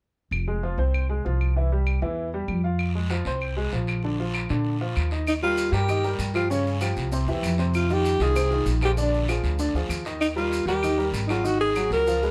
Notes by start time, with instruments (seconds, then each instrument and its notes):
0.31 upright bass F1, claves
0.48 upright piano G#3 G#4
0.63 upright piano F3 F4
0.78 upright bass C2, upright piano C4 C5
0.94 claves
1.09 upright piano G#3 G#4
1.25 upright bass C2, upright piano F3 F4
1.41 claves
1.56 upright piano E3 E4
1.72 upright piano G3 G4
1.87 claves
2.02 upright bass E2, upright piano E3 E4
2.34 upright piano G3 G4
2.48 upright bass F2, claves
2.64 upright piano F4 F5
2.79 long guiro, claves
2.95 upright piano G#3 G#4
3.10 upright piano F3 F4, short guiro
3.25 upright bass C2, upright piano C4 C5, short guiro
3.41 long guiro, claves
3.57 upright piano G#3 G#4
3.72 upright bass A#1, upright piano F3 F4, short guiro
3.87 short guiro, claves
4.03 upright piano D3 D4, long guiro
4.20 upright piano F3 F4
4.34 short guiro, claves
4.49 upright bass A#2, upright piano D3 D4, short guiro
4.65 long guiro
4.81 upright piano F3 F4
4.96 upright bass D#2, short guiro, claves
5.11 upright piano D#4 D#5, short guiro
5.27 alto saxophone D#4, long guiro, claves, maracas
5.43 upright piano G3 G4 A#4, alto saxophone F4, maracas
5.57 short guiro, maracas
5.72 upright bass G2, upright piano G3 G4 A#4, alto saxophone G4, short guiro, maracas
5.88 upright piano D#3 D#4 D#5, long guiro, claves, maracas
6.04 upright piano G3 G4 A#4, maracas
6.19 upright bass G2, short guiro, maracas
6.34 upright piano F3 F4 G4, alto saxophone F4, short guiro, claves, maracas
6.50 upright piano C#3 C#4 C#5, alto saxophone C#4, long guiro, maracas
6.67 maracas
6.81 upright piano F3 F4 G4, short guiro, claves, maracas
6.96 upright bass C2, short guiro, maracas
7.12 upright piano C3 C4 C5, long guiro, maracas
7.27 upright bass E2, upright piano E3 E4 G4, maracas
7.43 upright bass F2, short guiro, claves, maracas
7.58 upright piano C3 C4 C5, short guiro, maracas
7.74 alto saxophone F4, long guiro, claves, maracas
7.90 upright piano D#3 D#4 F4, alto saxophone G4, maracas
8.05 short guiro, maracas
8.20 upright bass C2, upright piano D#3 D#4 F4, alto saxophone G#4, short guiro, maracas
8.35 upright piano C3 C4 C5, long guiro, claves, maracas
8.50 upright piano D#3 D#4 F4, maracas
8.66 upright bass A#1, short guiro, maracas
8.81 upright piano F3 F4 G#4, alto saxophone G4, short guiro, claves, maracas
8.97 upright piano D3 D4 D5, long guiro, maracas
9.01 alto saxophone D4
9.14 maracas
9.28 upright piano F3 F4 G#4, short guiro, claves, maracas
9.43 upright bass D2, short guiro, maracas
9.59 upright piano D3 D4 D5, long guiro, maracas
9.74 upright bass D2, upright piano F3 F4 G#4, maracas
9.89 upright bass D#2, short guiro, claves, maracas
10.05 upright piano D#3 D#4 D#5, short guiro, maracas
10.20 alto saxophone D#4, long guiro, claves, maracas
10.36 upright piano G3 G4 A#4, alto saxophone F4, maracas
10.52 short guiro, maracas
10.66 upright bass D#2, upright piano G3 G4 A#4, alto saxophone G4, short guiro, maracas
10.83 upright piano D#3 D#4 D#5, long guiro, claves, maracas
10.97 upright piano G3 G4 A#4, maracas
11.12 upright bass G#1, short guiro, maracas
11.27 upright piano F#3 F#4 G#4, alto saxophone D#4 F4, short guiro, claves, maracas
11.44 upright piano D#3 D#4 D#5, alto saxophone F#4, long guiro, maracas
11.61 alto saxophone G#4, maracas
11.75 upright piano F#3 F#4 G#4, short guiro, claves, maracas
11.90 upright bass C#2, alto saxophone A#4, short guiro, maracas
12.07 upright piano F3 F4 F5, long guiro, maracas
12.23 upright piano G#3 G#4 B4, maracas